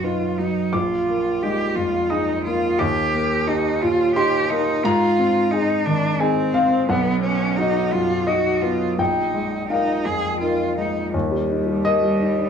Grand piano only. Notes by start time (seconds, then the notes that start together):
Already playing: B1 F#2 F#3 D#4 B4 B5
0.04 D#4 B4
0.39 F#3
0.73 A#1 D6
1.08 A#3
1.42 G#3 D#4
1.76 F2
2.10 D#4 G#4 D#6
2.46 A#3
2.79 D#2 D6
3.14 A#3
3.49 D#4 G4
3.83 A#2
4.16 D#4 G4 C6
4.50 A#3
4.84 G#2 A#5
5.19 C4
5.52 D#4 G#4
5.86 D#3
6.20 D#4 G#4 G#5
6.54 C4 F5
6.89 B1 F#5
7.23 B3
7.58 D#4 F#4
7.93 F#2
8.27 D#4 F#4 D#5
8.62 B3
8.98 A#1 G5
9.34 G#3
9.70 D#4 A#4 F5
10.06 F2
10.42 D#4 A#4
10.78 G#3
11.14 D#2
11.32 G3
11.50 D#4
11.67 G3
11.85 A#4 D#5
12.02 G3
12.20 D#4
12.37 D4